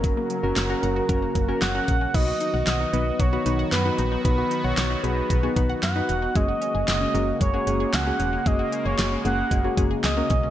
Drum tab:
CC |--------|x-------|--------|--------|
HH |xxxxxxxx|xxxxxxxx|xxxxxxxx|xxxxxxxx|
CP |--x---x-|--x---x-|--x---x-|--x---x-|
SD |--o---o-|--o---o-|--o---o-|--o---o-|
BD |o---oo-o|o---o---|o---oo--|o---o---|

CC |--------|
HH |xxxxxxxx|
CP |--x---x-|
SD |--o---o-|
BD |o---oo-o|